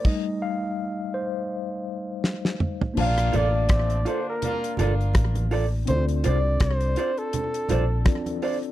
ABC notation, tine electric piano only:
X:1
M:4/4
L:1/8
Q:"Swing 16ths" 1/4=82
K:Bb
V:1 name="Tine electric piano"
[G,A,Ee] f2 c3 z2 | [B,DFcda]8 | [CD=EFAd]6 [CDFAd]2 |]